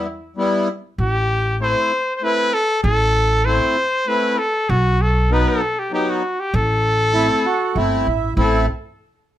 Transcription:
Already playing: cornet E4
0.36 accordion G3 B3 E4
0.98 upright bass A1, cornet G4
1.60 accordion A3 C4 E4, cornet C5
2.16 cornet C5
2.21 accordion A3 C4 E4, cornet B4
2.54 cornet A4
2.83 upright bass A1, cornet A4
3.45 accordion A3 C4 E4, cornet C5
4.07 accordion A3 C4 E4, cornet B4
4.38 cornet A4
4.69 upright bass B1, cornet F#4
5.02 cornet A4
5.30 accordion F#3 B3 D#4, cornet B4
5.48 cornet A4
5.79 cornet G4
5.91 accordion F#3 B3 D#4, cornet G4
6.10 cornet F#4
6.40 cornet G4
6.54 upright bass A1, cornet A4
7.13 accordion A3 C4 E4
7.46 accordion F#4
7.75 upright bass G1, accordion A3 C4 E4
8.07 upright bass A1
8.37 upright bass A1, accordion A3 C4 E4, cornet A4

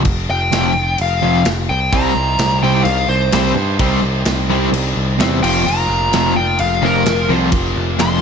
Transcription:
0.05 picked electric bass F1, kick, crash
0.30 picked electric bass F1, lead electric guitar G5
0.52 picked electric bass F1, overdriven electric guitar F2 C3 F3, snare, crash
0.98 picked electric bass F1, lead electric guitar F5, crash
1.22 picked electric bass F1, overdriven electric guitar F2 C3 F3
1.45 picked electric bass F1, snare, crash
1.69 picked electric bass C2, lead electric guitar G5
1.92 picked electric bass C2, overdriven electric guitar C3 G3 C4, distorted electric guitar C3 G3 C4 D#4 G4 C5, lead electric guitar A#5, kick, crash
2.15 picked electric bass C2
2.39 picked electric bass C2, snare, crash
2.63 overdriven electric guitar C3 G3 C4, lead electric guitar G5
2.84 picked electric bass C2, lead electric guitar F5, crash
3.08 picked electric bass C2, lead electric guitar C5
3.32 picked electric bass C2, overdriven electric guitar C3 G3 C4, snare, crash
3.55 picked electric bass G2, distorted electric guitar D#4 G4 C5
3.59 distorted electric guitar C3 G3 C4
3.79 picked electric bass C2, distorted electric guitar C3 G3 C4 D#4 G4, overdriven electric guitar C3 G3 C4, kick, crash
3.83 distorted electric guitar C5
4.03 picked electric bass C2
4.25 picked electric bass C2, snare, crash
4.50 overdriven electric guitar C3 G3 C4
4.72 picked electric bass C2, crash
4.96 picked electric bass C2
5.20 picked electric bass E2, overdriven electric guitar C3 G3 C4, snare, crash
5.42 picked electric bass F1, overdriven electric guitar F2 C3 F3, distorted electric guitar F3 A#3 F4 A#4 C5, lead electric guitar G5, crash
5.66 picked electric bass F1, lead electric guitar A#5, crash
5.88 picked electric bass F1
6.12 picked electric bass F1, overdriven electric guitar F2 C3 F3, snare, crash
6.37 lead electric guitar G5
6.59 picked electric bass F1, lead electric guitar F5, crash
6.82 picked electric bass F1, overdriven electric guitar F2 C3 F3, lead electric guitar A#4
7.04 picked electric bass F1, distorted electric guitar F3 A#3 F4 A#4 C5, snare, crash
7.27 picked electric bass C2, overdriven electric guitar F2 C3 F3, distorted electric guitar F3 A#3 F4 A#4 C5
7.52 picked electric bass F1, kick, crash
7.76 picked electric bass F1
7.99 picked electric bass F1, overdriven electric guitar F2 C3 F3, lead electric guitar C6, snare, crash

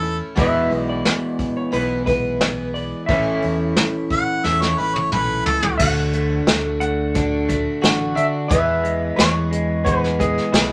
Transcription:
Already playing: fingered electric bass E2, clean electric guitar A2 E3 A3 C#4 E4, harmonica A4
0.01 twelve-string acoustic guitar A3 C#4 E4, open hi-hat
0.36 fingered electric bass E1, twelve-string acoustic guitar E2 B2 E3 G#3 B3 E4, electric slide guitar E5, kick, open hi-hat
0.70 fingered electric bass B1, twelve-string acoustic guitar E3 G#3 B3 E4, open hi-hat
0.89 electric slide guitar D5
1.05 snare, open hi-hat
1.39 kick, open hi-hat
1.57 electric slide guitar C#5
1.72 fingered electric bass B1, twelve-string acoustic guitar E2 B2 E3 G#3 B3 E4, electric slide guitar B4, open hi-hat
2.06 twelve-string acoustic guitar E3 G#3 B3 E4, electric slide guitar B4, kick, open hi-hat
2.41 twelve-string acoustic guitar E3 G#3 B3 E4, snare, open hi-hat
2.74 electric slide guitar D5, open hi-hat
3.06 fingered electric bass A1, twelve-string acoustic guitar A2 E3 A3, electric slide guitar E5, kick, open hi-hat
3.10 twelve-string acoustic guitar C#4 E4
3.42 fingered electric bass E2, twelve-string acoustic guitar A3 C#4 E4, open hi-hat
3.76 snare, open hi-hat
4.10 harmonica F#5, kick, open hi-hat
4.44 fingered electric bass E2, twelve-string acoustic guitar A2 E3 A3 C#4 E4, harmonica E5, snare
4.62 harmonica C#5, snare
4.78 fingered electric bass A1, twelve-string acoustic guitar A3 C#4 E4, harmonica B4
4.94 harmonica C#5, high tom
5.12 fingered electric bass B1, twelve-string acoustic guitar E3 A3 C#4 E4, harmonica B4, mid tom
5.46 fingered electric bass C#2, harmonica A4, floor tom
5.62 floor tom
5.78 fingered electric bass D2, twelve-string acoustic guitar D3 A3 D4 F#4, electric slide guitar F#5, kick, crash
6.13 clean electric guitar A3, closed hi-hat
6.47 fingered electric bass D2, twelve-string acoustic guitar D3 D4 F#4, snare, closed hi-hat
6.80 clean electric guitar A3, electric slide guitar F#5, closed hi-hat
7.14 twelve-string acoustic guitar D3 A3 D4 F#4, kick, closed hi-hat
7.48 twelve-string acoustic guitar A3 D4 F#4, kick, closed hi-hat
7.81 fingered electric bass A1, twelve-string acoustic guitar D3 A3 D4 F#4, snare, closed hi-hat
8.15 fingered electric bass D3, twelve-string acoustic guitar A3 D4 F#4, electric slide guitar E5, closed hi-hat
8.48 twelve-string acoustic guitar E2 B2 E3 G#3 B3 G#4, fingered electric bass E2, electric slide guitar E5, kick, closed hi-hat
8.83 clean electric guitar G#3, closed hi-hat
9.16 fingered electric bass E2, twelve-string acoustic guitar E3 G#3 B3 G#4, electric slide guitar C#5, snare, closed hi-hat
9.51 clean electric guitar G#3, closed hi-hat
9.84 twelve-string acoustic guitar E3 G#3 B3 G#4, electric slide guitar B4, kick, closed hi-hat
10.04 snare
10.19 twelve-string acoustic guitar E3 G#3 B3 G#4, electric slide guitar G#4, kick, closed hi-hat
10.38 snare
10.52 fingered electric bass B1, twelve-string acoustic guitar E3 G#3 B3 G#4, clean electric guitar E4, snare, closed hi-hat

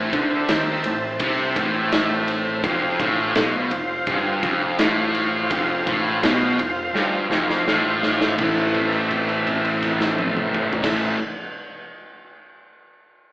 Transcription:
Already playing: picked electric bass A1, distorted electric guitar A2, tonewheel organ C4 A4 C5 E5
0.13 picked electric bass D2, distorted electric guitar D3, kick, ride
0.48 picked electric bass D#2, distorted electric guitar D#3, snare, ride
0.84 picked electric bass A1, distorted electric guitar A2, ride
1.19 picked electric bass C2, distorted electric guitar C3, kick, ride
1.56 picked electric bass A1, distorted electric guitar A2, kick, ride
1.92 snare, ride
2.28 ride
2.63 picked electric bass F1, distorted electric guitar F2, tonewheel organ F4 C5 F5, kick, ride
2.99 picked electric bass A1, distorted electric guitar A2, kick, ride
3.35 picked electric bass B1, distorted electric guitar B2, snare, ride
3.71 picked electric bass F1, distorted electric guitar F2, ride
4.07 picked electric bass G1, distorted electric guitar G2, kick, ride
4.42 picked electric bass F1, distorted electric guitar F2, kick, ride
4.78 picked electric bass A1, distorted electric guitar A2, snare, ride
5.15 ride
5.49 picked electric bass F1, distorted electric guitar F2, tonewheel organ F4 C5 F5, kick, ride
5.86 picked electric bass A1, distorted electric guitar A2, kick, ride
6.22 picked electric bass B1, distorted electric guitar B2, snare, ride
6.59 picked electric bass F1, distorted electric guitar F2, ride
6.93 picked electric bass G1, distorted electric guitar G2, snare
7.30 picked electric bass F1, distorted electric guitar F2, snare
7.50 snare
7.66 picked electric bass A1, distorted electric guitar A2, snare
8.03 snare
8.21 snare
8.38 picked electric bass A1, distorted electric guitar A2 E3 A3, tonewheel organ E4 A4 C5 E5, kick, crash
8.74 kick, crash
8.92 crash
9.11 kick, crash
9.29 crash
9.47 kick, crash
9.64 crash
9.83 kick, crash
10.01 snare
10.18 high tom
10.37 mid tom
10.54 mid tom
10.73 floor tom
10.82 picked electric bass A1, distorted electric guitar A2 E3, tonewheel organ E4 A4 C5 E5, kick, snare, crash
10.86 distorted electric guitar A3

